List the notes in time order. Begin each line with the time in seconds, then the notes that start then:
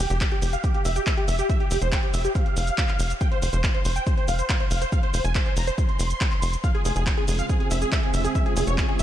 0.10 F1 G4, closed hi-hat, shaker
0.21 kick, clap, closed hi-hat, shaker
0.32 G4, closed hi-hat
0.42 F1 G4, open hi-hat, shaker
0.53 F5, closed hi-hat, shaker
0.64 G4, kick, closed hi-hat, shaker
0.74 G4, closed hi-hat
0.85 F1 E5, open hi-hat, shaker
0.96 G4, closed hi-hat, shaker
1.07 E5, kick, clap, closed hi-hat, shaker
1.17 G4, closed hi-hat
1.28 F1 E5, open hi-hat, shaker
1.39 G4, closed hi-hat, shaker
1.50 E5, kick, closed hi-hat, shaker
1.60 G4, closed hi-hat
1.71 F1 G4, open hi-hat, shaker
1.82 F1 C5, closed hi-hat, shaker
1.92 G4, kick, clap, closed hi-hat, shaker
2.03 G4, closed hi-hat
2.14 F1 E5, open hi-hat, shaker
2.25 G4, closed hi-hat, shaker
2.35 F5, kick, closed hi-hat, shaker
2.46 closed hi-hat
2.57 F1, open hi-hat, shaker
2.67 closed hi-hat, shaker
2.78 kick, clap, closed hi-hat, shaker
2.89 clap, closed hi-hat
2.99 F1, open hi-hat, shaker
3.10 closed hi-hat, shaker
3.21 G5, kick, closed hi-hat, shaker
3.31 C5, closed hi-hat
3.42 F1 C5, open hi-hat, shaker
3.53 F1 C5, closed hi-hat, shaker
3.64 kick, clap, closed hi-hat, shaker
3.74 C5, closed hi-hat
3.85 F1 C5, open hi-hat, shaker
3.96 G5, closed hi-hat, shaker
4.07 C5, kick, closed hi-hat, shaker
4.17 C5, closed hi-hat
4.28 F1 F5, open hi-hat, shaker
4.39 C5, closed hi-hat, shaker
4.49 F5, kick, clap, closed hi-hat, shaker
4.60 C5, closed hi-hat
4.71 F1 F5, open hi-hat, shaker
4.82 C5, closed hi-hat, shaker
4.92 F5, kick, closed hi-hat, shaker
5.03 C5, closed hi-hat
5.14 F1 C5, open hi-hat, shaker
5.24 F1 G#5, closed hi-hat, shaker
5.35 C5, kick, clap, closed hi-hat, shaker
5.46 C5, closed hi-hat
5.57 F1 A#5, open hi-hat, shaker
5.67 C5, closed hi-hat, shaker
5.78 C6, kick, closed hi-hat, shaker
5.89 closed hi-hat
5.99 F1, open hi-hat, shaker
6.10 closed hi-hat, shaker
6.21 kick, clap, closed hi-hat, shaker
6.32 clap, closed hi-hat
6.42 F1, open hi-hat, shaker
6.53 closed hi-hat, shaker
6.64 C#3 G#3 C4 F4 F5, kick, closed hi-hat, shaker
6.75 G#4, closed hi-hat
6.85 F1 G#4, open hi-hat, shaker
6.96 F1 G#4, closed hi-hat, shaker
7.07 kick, clap, closed hi-hat, shaker
7.17 G#4, closed hi-hat
7.28 F1 G#4, open hi-hat, shaker
7.39 F5, closed hi-hat, shaker
7.49 G#4, kick, closed hi-hat, shaker
7.60 G#4, closed hi-hat
7.71 F1 E5, open hi-hat, shaker
7.82 G#4, closed hi-hat, shaker
7.92 E5, kick, clap, closed hi-hat, shaker
8.03 G#4, closed hi-hat
8.14 F1 E5, open hi-hat, shaker
8.24 G#4, closed hi-hat, shaker
8.35 E5, kick, closed hi-hat, shaker
8.46 G#4, closed hi-hat
8.57 F1 G#4, open hi-hat, shaker
8.67 F1 C#5, closed hi-hat, shaker
8.78 G#4, kick, clap, closed hi-hat, shaker
8.89 G#4, closed hi-hat
8.99 F1 E5, open hi-hat, shaker